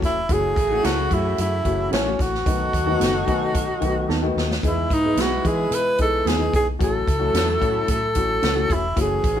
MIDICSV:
0, 0, Header, 1, 7, 480
1, 0, Start_track
1, 0, Tempo, 541516
1, 264, Time_signature, 4, 2, 24, 8
1, 8332, End_track
2, 0, Start_track
2, 0, Title_t, "Tenor saxophone"
2, 0, Program_c, 0, 66
2, 45, Note_on_c, 0, 64, 89
2, 287, Note_on_c, 0, 68, 95
2, 300, Note_off_c, 0, 64, 0
2, 751, Note_on_c, 0, 66, 88
2, 765, Note_off_c, 0, 68, 0
2, 1009, Note_on_c, 0, 64, 86
2, 1022, Note_off_c, 0, 66, 0
2, 1238, Note_off_c, 0, 64, 0
2, 1250, Note_on_c, 0, 64, 92
2, 1686, Note_off_c, 0, 64, 0
2, 1714, Note_on_c, 0, 61, 81
2, 1964, Note_on_c, 0, 66, 92
2, 1977, Note_off_c, 0, 61, 0
2, 3876, Note_off_c, 0, 66, 0
2, 4123, Note_on_c, 0, 64, 80
2, 4373, Note_on_c, 0, 63, 89
2, 4386, Note_off_c, 0, 64, 0
2, 4618, Note_on_c, 0, 66, 78
2, 4632, Note_off_c, 0, 63, 0
2, 4848, Note_on_c, 0, 68, 89
2, 4861, Note_off_c, 0, 66, 0
2, 5094, Note_on_c, 0, 71, 103
2, 5107, Note_off_c, 0, 68, 0
2, 5321, Note_off_c, 0, 71, 0
2, 5331, Note_on_c, 0, 69, 100
2, 5565, Note_on_c, 0, 68, 89
2, 5579, Note_off_c, 0, 69, 0
2, 5796, Note_off_c, 0, 68, 0
2, 5811, Note_on_c, 0, 68, 89
2, 5914, Note_off_c, 0, 68, 0
2, 6060, Note_on_c, 0, 69, 89
2, 6968, Note_off_c, 0, 69, 0
2, 7013, Note_on_c, 0, 69, 92
2, 7740, Note_on_c, 0, 64, 89
2, 7753, Note_off_c, 0, 69, 0
2, 7962, Note_off_c, 0, 64, 0
2, 7986, Note_on_c, 0, 68, 74
2, 8332, Note_off_c, 0, 68, 0
2, 8332, End_track
3, 0, Start_track
3, 0, Title_t, "Clean electric guitar"
3, 0, Program_c, 1, 27
3, 736, Note_on_c, 1, 61, 72
3, 742, Note_on_c, 1, 64, 82
3, 750, Note_on_c, 1, 69, 84
3, 857, Note_off_c, 1, 61, 0
3, 860, Note_off_c, 1, 64, 0
3, 864, Note_off_c, 1, 69, 0
3, 1693, Note_on_c, 1, 61, 63
3, 1700, Note_on_c, 1, 64, 78
3, 1702, Note_on_c, 1, 69, 79
3, 1816, Note_off_c, 1, 61, 0
3, 1820, Note_off_c, 1, 64, 0
3, 1821, Note_off_c, 1, 69, 0
3, 2658, Note_on_c, 1, 59, 68
3, 2666, Note_on_c, 1, 63, 66
3, 2670, Note_on_c, 1, 69, 77
3, 2779, Note_off_c, 1, 59, 0
3, 2783, Note_off_c, 1, 63, 0
3, 2786, Note_off_c, 1, 69, 0
3, 3623, Note_on_c, 1, 59, 80
3, 3627, Note_on_c, 1, 63, 77
3, 3631, Note_on_c, 1, 69, 90
3, 3742, Note_off_c, 1, 59, 0
3, 3744, Note_off_c, 1, 63, 0
3, 3746, Note_off_c, 1, 69, 0
3, 4582, Note_on_c, 1, 59, 65
3, 4585, Note_on_c, 1, 63, 71
3, 4593, Note_on_c, 1, 68, 78
3, 4702, Note_off_c, 1, 59, 0
3, 4703, Note_off_c, 1, 63, 0
3, 4707, Note_off_c, 1, 68, 0
3, 5547, Note_on_c, 1, 59, 83
3, 5555, Note_on_c, 1, 63, 72
3, 5559, Note_on_c, 1, 68, 88
3, 5664, Note_off_c, 1, 59, 0
3, 5668, Note_off_c, 1, 63, 0
3, 5670, Note_off_c, 1, 68, 0
3, 6511, Note_on_c, 1, 61, 75
3, 6516, Note_on_c, 1, 66, 76
3, 6524, Note_on_c, 1, 69, 83
3, 6626, Note_off_c, 1, 61, 0
3, 6628, Note_off_c, 1, 66, 0
3, 6632, Note_off_c, 1, 69, 0
3, 7466, Note_on_c, 1, 61, 82
3, 7472, Note_on_c, 1, 66, 90
3, 7481, Note_on_c, 1, 69, 88
3, 7583, Note_off_c, 1, 61, 0
3, 7586, Note_off_c, 1, 66, 0
3, 7590, Note_off_c, 1, 69, 0
3, 8332, End_track
4, 0, Start_track
4, 0, Title_t, "Horn section"
4, 0, Program_c, 2, 61
4, 255, Note_on_c, 2, 66, 85
4, 257, Note_on_c, 2, 57, 78
4, 258, Note_on_c, 2, 49, 85
4, 1908, Note_off_c, 2, 66, 0
4, 1909, Note_off_c, 2, 57, 0
4, 1910, Note_off_c, 2, 49, 0
4, 2174, Note_on_c, 2, 54, 75
4, 2177, Note_on_c, 2, 63, 73
4, 2181, Note_on_c, 2, 69, 80
4, 3827, Note_off_c, 2, 54, 0
4, 3829, Note_off_c, 2, 63, 0
4, 3831, Note_off_c, 2, 69, 0
4, 4113, Note_on_c, 2, 56, 75
4, 4118, Note_on_c, 2, 71, 80
4, 4119, Note_on_c, 2, 64, 73
4, 5756, Note_off_c, 2, 56, 0
4, 5759, Note_off_c, 2, 71, 0
4, 5760, Note_off_c, 2, 64, 0
4, 6026, Note_on_c, 2, 64, 79
4, 6029, Note_on_c, 2, 69, 91
4, 6030, Note_on_c, 2, 54, 72
4, 7672, Note_off_c, 2, 64, 0
4, 7673, Note_off_c, 2, 69, 0
4, 7674, Note_off_c, 2, 54, 0
4, 7949, Note_on_c, 2, 52, 75
4, 7949, Note_on_c, 2, 61, 80
4, 7954, Note_on_c, 2, 68, 90
4, 8332, Note_off_c, 2, 52, 0
4, 8332, Note_off_c, 2, 61, 0
4, 8332, Note_off_c, 2, 68, 0
4, 8332, End_track
5, 0, Start_track
5, 0, Title_t, "Upright piano"
5, 0, Program_c, 3, 0
5, 0, Note_on_c, 3, 52, 71
5, 0, Note_on_c, 3, 57, 68
5, 0, Note_on_c, 3, 61, 66
5, 0, Note_on_c, 3, 66, 79
5, 130, Note_off_c, 3, 52, 0
5, 131, Note_off_c, 3, 61, 0
5, 133, Note_off_c, 3, 57, 0
5, 135, Note_off_c, 3, 66, 0
5, 258, Note_on_c, 3, 57, 62
5, 260, Note_on_c, 3, 52, 69
5, 266, Note_on_c, 3, 61, 64
5, 266, Note_on_c, 3, 66, 81
5, 489, Note_off_c, 3, 57, 0
5, 490, Note_off_c, 3, 52, 0
5, 493, Note_off_c, 3, 61, 0
5, 493, Note_off_c, 3, 66, 0
5, 625, Note_on_c, 3, 52, 67
5, 633, Note_on_c, 3, 57, 60
5, 637, Note_on_c, 3, 61, 59
5, 640, Note_on_c, 3, 66, 70
5, 853, Note_off_c, 3, 52, 0
5, 857, Note_off_c, 3, 57, 0
5, 859, Note_off_c, 3, 61, 0
5, 860, Note_off_c, 3, 66, 0
5, 978, Note_on_c, 3, 52, 70
5, 983, Note_on_c, 3, 57, 55
5, 992, Note_on_c, 3, 61, 56
5, 992, Note_on_c, 3, 66, 65
5, 1286, Note_off_c, 3, 52, 0
5, 1288, Note_off_c, 3, 57, 0
5, 1292, Note_off_c, 3, 66, 0
5, 1293, Note_off_c, 3, 61, 0
5, 1460, Note_on_c, 3, 52, 65
5, 1464, Note_on_c, 3, 57, 64
5, 1468, Note_on_c, 3, 61, 58
5, 1469, Note_on_c, 3, 66, 77
5, 1691, Note_off_c, 3, 52, 0
5, 1693, Note_off_c, 3, 57, 0
5, 1695, Note_off_c, 3, 61, 0
5, 1695, Note_off_c, 3, 66, 0
5, 1824, Note_on_c, 3, 52, 75
5, 1825, Note_on_c, 3, 61, 59
5, 1826, Note_on_c, 3, 57, 65
5, 1832, Note_on_c, 3, 66, 78
5, 2053, Note_off_c, 3, 52, 0
5, 2053, Note_off_c, 3, 61, 0
5, 2054, Note_off_c, 3, 57, 0
5, 2057, Note_off_c, 3, 66, 0
5, 2177, Note_on_c, 3, 51, 66
5, 2178, Note_on_c, 3, 57, 57
5, 2185, Note_on_c, 3, 59, 67
5, 2186, Note_on_c, 3, 66, 67
5, 2410, Note_off_c, 3, 51, 0
5, 2410, Note_off_c, 3, 57, 0
5, 2414, Note_off_c, 3, 59, 0
5, 2414, Note_off_c, 3, 66, 0
5, 2536, Note_on_c, 3, 51, 79
5, 2536, Note_on_c, 3, 59, 69
5, 2537, Note_on_c, 3, 57, 68
5, 2539, Note_on_c, 3, 66, 88
5, 2769, Note_off_c, 3, 51, 0
5, 2769, Note_off_c, 3, 59, 0
5, 2770, Note_off_c, 3, 57, 0
5, 2771, Note_off_c, 3, 66, 0
5, 2888, Note_on_c, 3, 51, 76
5, 2893, Note_on_c, 3, 59, 68
5, 2894, Note_on_c, 3, 57, 71
5, 2897, Note_on_c, 3, 80, 82
5, 3201, Note_off_c, 3, 51, 0
5, 3204, Note_off_c, 3, 57, 0
5, 3204, Note_off_c, 3, 59, 0
5, 3206, Note_off_c, 3, 80, 0
5, 3371, Note_on_c, 3, 51, 80
5, 3381, Note_on_c, 3, 57, 67
5, 3381, Note_on_c, 3, 59, 73
5, 3385, Note_on_c, 3, 66, 89
5, 3607, Note_off_c, 3, 51, 0
5, 3612, Note_off_c, 3, 57, 0
5, 3612, Note_off_c, 3, 59, 0
5, 3614, Note_off_c, 3, 66, 0
5, 3742, Note_on_c, 3, 51, 85
5, 3746, Note_on_c, 3, 59, 79
5, 3747, Note_on_c, 3, 57, 74
5, 3754, Note_on_c, 3, 66, 82
5, 3973, Note_off_c, 3, 51, 0
5, 3974, Note_off_c, 3, 59, 0
5, 3975, Note_off_c, 3, 57, 0
5, 3978, Note_off_c, 3, 66, 0
5, 4101, Note_on_c, 3, 52, 66
5, 4107, Note_on_c, 3, 59, 59
5, 4108, Note_on_c, 3, 63, 62
5, 4111, Note_on_c, 3, 68, 78
5, 4332, Note_off_c, 3, 52, 0
5, 4335, Note_off_c, 3, 59, 0
5, 4336, Note_off_c, 3, 63, 0
5, 4337, Note_off_c, 3, 68, 0
5, 4466, Note_on_c, 3, 52, 62
5, 4470, Note_on_c, 3, 59, 62
5, 4478, Note_on_c, 3, 63, 54
5, 4479, Note_on_c, 3, 68, 72
5, 4695, Note_off_c, 3, 52, 0
5, 4697, Note_off_c, 3, 59, 0
5, 4700, Note_off_c, 3, 63, 0
5, 4701, Note_off_c, 3, 68, 0
5, 4821, Note_on_c, 3, 52, 65
5, 4825, Note_on_c, 3, 63, 58
5, 4830, Note_on_c, 3, 59, 57
5, 4834, Note_on_c, 3, 68, 68
5, 5128, Note_off_c, 3, 52, 0
5, 5130, Note_off_c, 3, 63, 0
5, 5132, Note_off_c, 3, 59, 0
5, 5134, Note_off_c, 3, 68, 0
5, 5305, Note_on_c, 3, 52, 60
5, 5309, Note_on_c, 3, 63, 57
5, 5310, Note_on_c, 3, 59, 58
5, 5318, Note_on_c, 3, 68, 74
5, 5534, Note_off_c, 3, 52, 0
5, 5536, Note_off_c, 3, 59, 0
5, 5536, Note_off_c, 3, 63, 0
5, 5540, Note_off_c, 3, 68, 0
5, 5659, Note_on_c, 3, 59, 65
5, 5663, Note_on_c, 3, 52, 71
5, 5665, Note_on_c, 3, 63, 66
5, 5673, Note_on_c, 3, 68, 77
5, 5891, Note_off_c, 3, 59, 0
5, 5893, Note_off_c, 3, 52, 0
5, 5894, Note_off_c, 3, 63, 0
5, 5898, Note_off_c, 3, 68, 0
5, 6017, Note_on_c, 3, 57, 65
5, 6018, Note_on_c, 3, 61, 56
5, 6019, Note_on_c, 3, 52, 63
5, 6021, Note_on_c, 3, 66, 82
5, 6249, Note_off_c, 3, 57, 0
5, 6250, Note_off_c, 3, 61, 0
5, 6251, Note_off_c, 3, 52, 0
5, 6252, Note_off_c, 3, 66, 0
5, 6370, Note_on_c, 3, 52, 68
5, 6375, Note_on_c, 3, 66, 70
5, 6376, Note_on_c, 3, 61, 57
5, 6378, Note_on_c, 3, 57, 64
5, 6606, Note_off_c, 3, 52, 0
5, 6608, Note_off_c, 3, 66, 0
5, 6609, Note_off_c, 3, 61, 0
5, 6610, Note_off_c, 3, 57, 0
5, 6737, Note_on_c, 3, 52, 76
5, 6738, Note_on_c, 3, 57, 72
5, 6744, Note_on_c, 3, 66, 82
5, 6746, Note_on_c, 3, 61, 68
5, 7045, Note_off_c, 3, 52, 0
5, 7046, Note_off_c, 3, 57, 0
5, 7048, Note_off_c, 3, 66, 0
5, 7050, Note_off_c, 3, 61, 0
5, 7223, Note_on_c, 3, 52, 66
5, 7228, Note_on_c, 3, 57, 58
5, 7232, Note_on_c, 3, 61, 63
5, 7236, Note_on_c, 3, 66, 75
5, 7452, Note_off_c, 3, 52, 0
5, 7455, Note_off_c, 3, 57, 0
5, 7456, Note_off_c, 3, 61, 0
5, 7458, Note_off_c, 3, 66, 0
5, 7573, Note_on_c, 3, 52, 75
5, 7577, Note_on_c, 3, 57, 61
5, 7577, Note_on_c, 3, 66, 83
5, 7579, Note_on_c, 3, 61, 64
5, 7807, Note_off_c, 3, 52, 0
5, 7809, Note_off_c, 3, 57, 0
5, 7809, Note_off_c, 3, 66, 0
5, 7810, Note_off_c, 3, 61, 0
5, 7942, Note_on_c, 3, 52, 66
5, 7942, Note_on_c, 3, 57, 66
5, 7944, Note_on_c, 3, 66, 80
5, 7946, Note_on_c, 3, 61, 59
5, 8171, Note_off_c, 3, 52, 0
5, 8171, Note_off_c, 3, 57, 0
5, 8172, Note_off_c, 3, 66, 0
5, 8173, Note_off_c, 3, 61, 0
5, 8293, Note_on_c, 3, 52, 65
5, 8302, Note_on_c, 3, 57, 59
5, 8302, Note_on_c, 3, 61, 62
5, 8302, Note_on_c, 3, 66, 75
5, 8332, Note_off_c, 3, 52, 0
5, 8332, Note_off_c, 3, 57, 0
5, 8332, Note_off_c, 3, 61, 0
5, 8332, Note_off_c, 3, 66, 0
5, 8332, End_track
6, 0, Start_track
6, 0, Title_t, "Fingered electric bass"
6, 0, Program_c, 4, 33
6, 24, Note_on_c, 4, 28, 72
6, 217, Note_off_c, 4, 28, 0
6, 258, Note_on_c, 4, 30, 96
6, 453, Note_off_c, 4, 30, 0
6, 497, Note_on_c, 4, 33, 86
6, 693, Note_off_c, 4, 33, 0
6, 750, Note_on_c, 4, 37, 90
6, 941, Note_off_c, 4, 37, 0
6, 980, Note_on_c, 4, 42, 99
6, 1175, Note_off_c, 4, 42, 0
6, 1226, Note_on_c, 4, 42, 84
6, 1418, Note_off_c, 4, 42, 0
6, 1461, Note_on_c, 4, 30, 85
6, 1656, Note_off_c, 4, 30, 0
6, 1700, Note_on_c, 4, 33, 86
6, 1895, Note_off_c, 4, 33, 0
6, 1940, Note_on_c, 4, 33, 74
6, 2135, Note_off_c, 4, 33, 0
6, 2180, Note_on_c, 4, 35, 93
6, 2375, Note_off_c, 4, 35, 0
6, 2421, Note_on_c, 4, 39, 83
6, 2616, Note_off_c, 4, 39, 0
6, 2656, Note_on_c, 4, 30, 91
6, 2853, Note_off_c, 4, 30, 0
6, 2906, Note_on_c, 4, 47, 101
6, 3099, Note_off_c, 4, 47, 0
6, 3140, Note_on_c, 4, 47, 89
6, 3336, Note_off_c, 4, 47, 0
6, 3383, Note_on_c, 4, 35, 74
6, 3578, Note_off_c, 4, 35, 0
6, 3623, Note_on_c, 4, 39, 76
6, 3818, Note_off_c, 4, 39, 0
6, 3863, Note_on_c, 4, 39, 62
6, 4058, Note_off_c, 4, 39, 0
6, 4103, Note_on_c, 4, 40, 86
6, 4298, Note_off_c, 4, 40, 0
6, 4347, Note_on_c, 4, 44, 88
6, 4540, Note_off_c, 4, 44, 0
6, 4575, Note_on_c, 4, 35, 77
6, 4772, Note_off_c, 4, 35, 0
6, 4829, Note_on_c, 4, 52, 89
6, 5021, Note_off_c, 4, 52, 0
6, 5061, Note_on_c, 4, 47, 82
6, 5256, Note_off_c, 4, 47, 0
6, 5312, Note_on_c, 4, 35, 81
6, 5503, Note_off_c, 4, 35, 0
6, 5540, Note_on_c, 4, 39, 79
6, 5736, Note_off_c, 4, 39, 0
6, 5790, Note_on_c, 4, 35, 83
6, 5982, Note_off_c, 4, 35, 0
6, 6032, Note_on_c, 4, 33, 99
6, 6222, Note_off_c, 4, 33, 0
6, 6273, Note_on_c, 4, 37, 89
6, 6463, Note_off_c, 4, 37, 0
6, 6504, Note_on_c, 4, 40, 92
6, 6697, Note_off_c, 4, 40, 0
6, 6751, Note_on_c, 4, 45, 93
6, 6942, Note_off_c, 4, 45, 0
6, 6989, Note_on_c, 4, 45, 91
6, 7229, Note_on_c, 4, 33, 86
6, 7242, Note_off_c, 4, 45, 0
6, 7420, Note_off_c, 4, 33, 0
6, 7464, Note_on_c, 4, 37, 77
6, 7657, Note_off_c, 4, 37, 0
6, 7712, Note_on_c, 4, 28, 79
6, 7902, Note_off_c, 4, 28, 0
6, 7951, Note_on_c, 4, 30, 89
6, 8141, Note_off_c, 4, 30, 0
6, 8190, Note_on_c, 4, 33, 98
6, 8332, Note_off_c, 4, 33, 0
6, 8332, End_track
7, 0, Start_track
7, 0, Title_t, "Drums"
7, 21, Note_on_c, 9, 36, 92
7, 29, Note_on_c, 9, 42, 68
7, 30, Note_on_c, 9, 38, 36
7, 110, Note_off_c, 9, 36, 0
7, 118, Note_off_c, 9, 42, 0
7, 119, Note_off_c, 9, 38, 0
7, 258, Note_on_c, 9, 42, 79
7, 260, Note_on_c, 9, 36, 110
7, 346, Note_off_c, 9, 42, 0
7, 348, Note_off_c, 9, 36, 0
7, 500, Note_on_c, 9, 36, 95
7, 506, Note_on_c, 9, 42, 73
7, 589, Note_off_c, 9, 36, 0
7, 595, Note_off_c, 9, 42, 0
7, 748, Note_on_c, 9, 42, 87
7, 759, Note_on_c, 9, 38, 94
7, 836, Note_off_c, 9, 42, 0
7, 847, Note_off_c, 9, 38, 0
7, 984, Note_on_c, 9, 36, 87
7, 985, Note_on_c, 9, 42, 59
7, 1072, Note_off_c, 9, 36, 0
7, 1073, Note_off_c, 9, 42, 0
7, 1225, Note_on_c, 9, 42, 89
7, 1313, Note_off_c, 9, 42, 0
7, 1463, Note_on_c, 9, 36, 67
7, 1463, Note_on_c, 9, 42, 62
7, 1551, Note_off_c, 9, 36, 0
7, 1551, Note_off_c, 9, 42, 0
7, 1706, Note_on_c, 9, 42, 74
7, 1715, Note_on_c, 9, 38, 109
7, 1795, Note_off_c, 9, 42, 0
7, 1804, Note_off_c, 9, 38, 0
7, 1943, Note_on_c, 9, 36, 84
7, 1951, Note_on_c, 9, 42, 63
7, 1952, Note_on_c, 9, 38, 30
7, 2032, Note_off_c, 9, 36, 0
7, 2040, Note_off_c, 9, 42, 0
7, 2041, Note_off_c, 9, 38, 0
7, 2078, Note_on_c, 9, 38, 38
7, 2167, Note_off_c, 9, 38, 0
7, 2182, Note_on_c, 9, 36, 109
7, 2184, Note_on_c, 9, 42, 80
7, 2271, Note_off_c, 9, 36, 0
7, 2272, Note_off_c, 9, 42, 0
7, 2423, Note_on_c, 9, 36, 95
7, 2429, Note_on_c, 9, 42, 75
7, 2512, Note_off_c, 9, 36, 0
7, 2517, Note_off_c, 9, 42, 0
7, 2667, Note_on_c, 9, 42, 86
7, 2678, Note_on_c, 9, 38, 84
7, 2755, Note_off_c, 9, 42, 0
7, 2766, Note_off_c, 9, 38, 0
7, 2903, Note_on_c, 9, 42, 52
7, 2905, Note_on_c, 9, 36, 87
7, 2992, Note_off_c, 9, 42, 0
7, 2994, Note_off_c, 9, 36, 0
7, 3143, Note_on_c, 9, 42, 82
7, 3144, Note_on_c, 9, 36, 86
7, 3232, Note_off_c, 9, 36, 0
7, 3232, Note_off_c, 9, 42, 0
7, 3383, Note_on_c, 9, 42, 60
7, 3385, Note_on_c, 9, 36, 62
7, 3471, Note_off_c, 9, 42, 0
7, 3474, Note_off_c, 9, 36, 0
7, 3633, Note_on_c, 9, 38, 55
7, 3721, Note_off_c, 9, 38, 0
7, 3881, Note_on_c, 9, 38, 78
7, 3969, Note_off_c, 9, 38, 0
7, 3999, Note_on_c, 9, 38, 74
7, 4088, Note_off_c, 9, 38, 0
7, 4107, Note_on_c, 9, 36, 109
7, 4112, Note_on_c, 9, 42, 72
7, 4196, Note_off_c, 9, 36, 0
7, 4201, Note_off_c, 9, 42, 0
7, 4347, Note_on_c, 9, 36, 92
7, 4352, Note_on_c, 9, 42, 77
7, 4436, Note_off_c, 9, 36, 0
7, 4441, Note_off_c, 9, 42, 0
7, 4585, Note_on_c, 9, 42, 94
7, 4596, Note_on_c, 9, 38, 92
7, 4674, Note_off_c, 9, 42, 0
7, 4685, Note_off_c, 9, 38, 0
7, 4829, Note_on_c, 9, 36, 88
7, 4831, Note_on_c, 9, 42, 55
7, 4918, Note_off_c, 9, 36, 0
7, 4919, Note_off_c, 9, 42, 0
7, 5068, Note_on_c, 9, 42, 89
7, 5156, Note_off_c, 9, 42, 0
7, 5304, Note_on_c, 9, 42, 63
7, 5310, Note_on_c, 9, 36, 64
7, 5392, Note_off_c, 9, 42, 0
7, 5399, Note_off_c, 9, 36, 0
7, 5558, Note_on_c, 9, 42, 87
7, 5567, Note_on_c, 9, 38, 113
7, 5646, Note_off_c, 9, 42, 0
7, 5655, Note_off_c, 9, 38, 0
7, 5793, Note_on_c, 9, 36, 94
7, 5798, Note_on_c, 9, 42, 69
7, 5881, Note_off_c, 9, 36, 0
7, 5886, Note_off_c, 9, 42, 0
7, 6032, Note_on_c, 9, 36, 105
7, 6035, Note_on_c, 9, 42, 73
7, 6121, Note_off_c, 9, 36, 0
7, 6123, Note_off_c, 9, 42, 0
7, 6271, Note_on_c, 9, 36, 90
7, 6276, Note_on_c, 9, 42, 79
7, 6360, Note_off_c, 9, 36, 0
7, 6364, Note_off_c, 9, 42, 0
7, 6510, Note_on_c, 9, 42, 95
7, 6521, Note_on_c, 9, 38, 97
7, 6598, Note_off_c, 9, 42, 0
7, 6609, Note_off_c, 9, 38, 0
7, 6751, Note_on_c, 9, 36, 87
7, 6755, Note_on_c, 9, 42, 52
7, 6840, Note_off_c, 9, 36, 0
7, 6844, Note_off_c, 9, 42, 0
7, 6985, Note_on_c, 9, 42, 91
7, 6990, Note_on_c, 9, 36, 88
7, 7073, Note_off_c, 9, 42, 0
7, 7078, Note_off_c, 9, 36, 0
7, 7222, Note_on_c, 9, 42, 68
7, 7231, Note_on_c, 9, 36, 71
7, 7311, Note_off_c, 9, 42, 0
7, 7319, Note_off_c, 9, 36, 0
7, 7469, Note_on_c, 9, 42, 75
7, 7478, Note_on_c, 9, 38, 109
7, 7558, Note_off_c, 9, 42, 0
7, 7567, Note_off_c, 9, 38, 0
7, 7711, Note_on_c, 9, 36, 92
7, 7715, Note_on_c, 9, 42, 64
7, 7799, Note_off_c, 9, 36, 0
7, 7804, Note_off_c, 9, 42, 0
7, 7948, Note_on_c, 9, 42, 84
7, 7949, Note_on_c, 9, 36, 100
7, 8036, Note_off_c, 9, 42, 0
7, 8038, Note_off_c, 9, 36, 0
7, 8189, Note_on_c, 9, 36, 94
7, 8189, Note_on_c, 9, 42, 81
7, 8278, Note_off_c, 9, 36, 0
7, 8278, Note_off_c, 9, 42, 0
7, 8332, End_track
0, 0, End_of_file